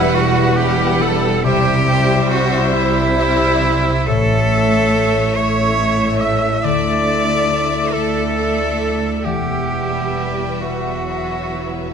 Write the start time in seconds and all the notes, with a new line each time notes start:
Already playing: E3 G3 E4 B4 F#5
0.13 E1 E2 F#4 B4
0.56 G3 G4 B4 F#5
1.00 G3 A4
1.43 C2 C3 G3 E4 G4 C5 E5
1.86 G3 C5 E5
2.30 E4 F#4
2.72 C2 C3 E4 C5
3.15 G3 E4 C5 E5
3.61 G3
4.06 A1 A2 A3 E4 A4 C#5 E5
4.50 A3 C#5 E5
4.94 E4
5.35 A1 A2 C#5 E5
5.78 A3 E4 C#5 E5
6.20 A3 E5
6.61 D2 D3 A3 D5 E5
7.05 A3 D5 E5
7.49 E4
7.93 D2 A4 D5 E5
8.37 A3 E4 D5 E5
8.82 A3
9.24 E1 E2 E3 E4 G4 E5 F#5
9.69 G3 E4 B4 E5
10.15 B4
10.60 E1 E2 F#4 E5 F#5
11.07 F#3 B4 E5
11.55 E4